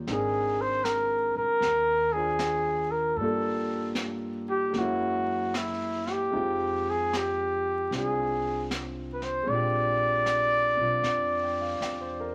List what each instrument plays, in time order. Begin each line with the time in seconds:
0.07 upright bass G#1, grand piano G#3 C4 D4 D#4, trumpet G#4, brush sweep, snare
0.12 grand piano A#4
0.61 trumpet C5
0.84 trumpet A#4, snare, hi-hat pedal
1.35 upright bass G1, trumpet A#4
1.60 upright bass D#2, brush sweep, snare
2.13 grand piano D4 F4, trumpet G#4
2.17 grand piano C5
2.39 snare, hi-hat pedal
2.91 trumpet A#4
3.16 upright bass G2, grand piano A#3 D4, trumpet A4, brush sweep
3.20 grand piano G3 F4 A4
3.95 snare, hi-hat pedal
4.50 trumpet G4
4.69 grand piano G#3 A#3
4.74 upright bass F#2, grand piano C#4, brush sweep, snare
4.78 grand piano F#3 E4, trumpet F#4
5.54 trumpet E4, snare, hi-hat pedal
6.07 trumpet G4, snare
6.31 upright bass F2, grand piano G#3 C4 D#4 F4, brush sweep
6.36 grand piano G5
6.90 trumpet G#4
7.13 trumpet G4, snare, hi-hat pedal
7.91 upright bass C2, grand piano C4 D4, brush sweep, snare
7.96 grand piano F4, trumpet G#4
8.71 snare, hi-hat pedal
9.13 trumpet B4
9.22 trumpet C5, snare
9.43 grand piano G#3 C4
9.47 upright bass A#1, grand piano D4, trumpet D5, brush sweep
9.52 grand piano F4 G4
10.26 snare, hi-hat pedal
10.76 upright bass B1, grand piano C4 D4 F4
11.02 upright bass F2, brush sweep, snare
11.43 grand piano G5
11.61 grand piano F5
11.80 upright bass E2, grand piano D5, snare, hi-hat pedal
12.01 grand piano C5
12.20 grand piano A#4